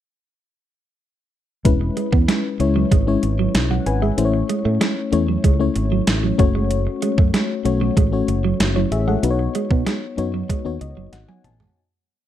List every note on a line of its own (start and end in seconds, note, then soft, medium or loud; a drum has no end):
1.65 1.89 E1 loud
1.65 2.24 G#3 medium
1.65 2.24 C#4 medium
1.65 2.25 E4 medium
1.65 2.25 B4 medium
1.65 kick loud
1.65 closed hi-hat medium
1.81 muted clean electric guitar stroke soft
1.97 2.09 G#3 medium
1.97 closed hi-hat medium
2.12 2.24 E2 medium
2.12 2.24 B3 medium
2.12 kick medium
2.28 2.40 G#3 medium
2.28 snare medium
2.28 closed hi-hat medium
2.59 2.83 C#2 medium
2.59 2.89 G#3 medium
2.59 2.90 C#4 medium
2.59 2.90 E4 medium
2.59 2.90 C#5 medium
2.59 muted clean electric guitar stroke soft
2.59 closed hi-hat medium
2.76 2.88 F#3 medium
2.91 3.15 G#1 medium
2.91 3.03 G#3 medium
2.91 kick medium
2.91 closed hi-hat medium
3.07 3.76 G#3 medium
3.07 3.76 C#4 medium
3.07 3.77 E4 medium
3.07 3.55 C#5 medium
3.23 3.47 G#1 medium
3.23 muted clean electric guitar stroke soft
3.23 closed hi-hat medium
3.39 3.51 F#3 medium
3.54 3.78 B1 medium
3.54 snare loud
3.54 closed hi-hat medium
3.71 3.83 F#3 medium
3.71 3.86 F#5 medium
3.86 4.10 G#1 medium
3.86 4.02 B4 medium
3.86 4.01 G#5 medium
3.86 muted clean electric guitar stroke soft
3.86 closed hi-hat medium
4.02 4.14 G#3 medium
4.02 4.32 G#4 soft
4.02 4.32 E5 medium
4.17 4.41 A1 medium
4.17 4.77 A3 medium
4.17 4.77 C#4 medium
4.17 4.77 E4 medium
4.17 4.25 C5 medium
4.17 closed hi-hat medium
4.25 4.81 C#5 medium
4.34 muted clean electric guitar stroke soft
4.49 4.61 G#3 medium
4.49 closed hi-hat medium
4.65 4.77 A2 medium
4.65 4.77 A3 medium
4.81 4.93 G#3 medium
4.81 snare medium
4.81 closed hi-hat medium
5.12 5.36 E2 medium
5.12 5.42 A3 medium
5.12 5.42 C#4 medium
5.12 5.42 E4 medium
5.12 5.43 C#5 medium
5.12 muted clean electric guitar stroke soft
5.12 closed hi-hat medium
5.28 5.40 F#3 medium
5.44 5.68 C#2 medium
5.44 5.56 G#3 medium
5.44 kick medium
5.44 closed hi-hat medium
5.59 6.29 A3 medium
5.59 6.29 C#4 medium
5.59 6.29 E4 medium
5.59 6.30 C#5 medium
5.76 5.99 G#1 medium
5.76 muted clean electric guitar stroke soft
5.76 closed hi-hat medium
5.92 6.04 F#3 medium
6.07 6.31 A1 medium
6.07 snare loud
6.07 closed hi-hat medium
6.23 6.35 F#3 medium
6.38 6.86 F#1 medium
6.38 7.40 A3 medium
6.38 7.40 C#4 medium
6.38 7.40 F#4 medium
6.38 7.40 C#5 loud
6.38 muted clean electric guitar stroke soft
6.38 kick medium
6.38 closed hi-hat medium
6.55 6.67 G#3 medium
6.71 closed hi-hat medium
6.87 muted clean electric guitar stroke soft
7.02 7.14 G#3 medium
7.02 closed hi-hat medium
7.18 7.30 F#2 medium
7.18 7.30 A3 medium
7.18 kick medium
7.34 7.46 G#3 medium
7.34 snare medium
7.34 closed hi-hat medium
7.65 7.89 B1 medium
7.65 7.95 A3 medium
7.65 7.95 C#4 medium
7.65 7.95 F#4 medium
7.65 7.95 C#5 medium
7.65 muted clean electric guitar stroke soft
7.65 closed hi-hat medium
7.81 7.93 F#3 medium
7.97 8.21 A1 medium
7.97 8.09 G#3 medium
7.97 kick medium
7.97 closed hi-hat medium
8.12 8.81 A3 medium
8.12 8.82 C#4 medium
8.12 8.60 F#4 medium
8.12 8.60 C#5 medium
8.28 8.52 F#1 medium
8.28 muted clean electric guitar stroke soft
8.28 closed hi-hat medium
8.44 8.56 F#3 medium
8.60 8.84 F#1 medium
8.60 snare loud
8.60 closed hi-hat medium
8.76 8.88 F#3 medium
8.76 8.91 E4 medium
8.76 8.91 C#5 medium
8.91 9.15 A1 medium
8.91 9.07 G#4 medium
8.91 9.07 E5 medium
8.91 muted clean electric guitar stroke soft
8.91 closed hi-hat medium
9.08 9.19 G#3 medium
9.08 9.38 A4 soft
9.08 9.38 F#5 medium
9.23 9.47 B1 medium
9.23 9.82 B3 medium
9.23 9.82 D#4 medium
9.23 9.83 F#4 medium
9.23 9.30 B4 medium
9.23 closed hi-hat medium
9.30 9.86 C#5 medium
9.39 muted clean electric guitar stroke soft
9.55 9.67 G#3 medium
9.55 closed hi-hat medium
9.71 9.82 B2 medium
9.71 9.82 B3 medium
9.71 kick medium
9.87 9.98 G#3 medium
9.87 snare medium
9.87 closed hi-hat medium
10.17 10.42 F#2 medium
10.17 10.47 B3 medium
10.17 10.48 D#4 medium
10.17 10.48 F#4 medium
10.17 10.48 C#5 medium
10.17 muted clean electric guitar stroke soft
10.17 closed hi-hat medium
10.34 10.46 F#3 medium
10.49 10.61 G#3 medium
10.49 kick medium
10.49 closed hi-hat medium
10.65 10.77 D#2 medium
10.65 11.34 B3 medium
10.65 11.34 D#4 medium
10.65 11.35 F#4 medium
10.65 11.35 C#5 medium
10.81 10.93 C#2 medium
10.81 11.10 D#5 medium
10.81 muted clean electric guitar stroke soft
10.81 closed hi-hat medium
10.97 11.09 F#1 medium
10.97 11.09 F#3 medium
11.13 11.24 G#1 medium
11.13 11.27 F#5 medium
11.13 snare soft
11.13 closed hi-hat medium
11.28 11.40 F#3 medium
11.28 11.43 G#5 medium
11.28 high tom medium
11.44 11.68 A1 medium
11.44 11.74 A5 medium
11.44 muted clean electric guitar stroke soft
11.44 closed hi-hat medium
11.44 mid tom medium
11.60 11.72 G#3 medium
11.60 floor tom medium